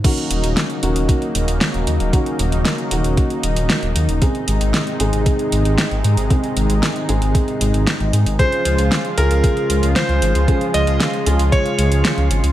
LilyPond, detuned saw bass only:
\new Staff \with { instrumentName = "Detuned saw bass" } { \clef bass \time 4/4 \key ees \dorian \tempo 4 = 115 r8 ees,,16 ees,,16 r8 ees,,16 ees,,16 r8 ees,,16 ees,,16 r16 ees,,16 ees,16 ees,,16 | r8 ees,,16 ees,,16 r8 ees,,16 ees,,16 r8 ees,,16 ees,,16 r16 ees,,16 ees,16 ees,,16 | r8 aes,,16 aes,,16 r8 aes,,16 aes,,16 r8 aes,,16 aes,,16 r16 aes,,16 aes,16 aes,,16 | r8 aes,,16 aes,,16 r8 aes,,16 aes,,16 r8 aes,,16 aes,,16 r16 aes,,16 aes,16 aes,,16 |
r8 des,16 des,16 r8 des,16 des,16 r8 des,16 des,16 r16 des,16 aes,,16 des,16 | r8 des,16 des,16 r8 des,16 des,16 r8 des,16 des,16 r16 des,16 aes,,16 des,16 | }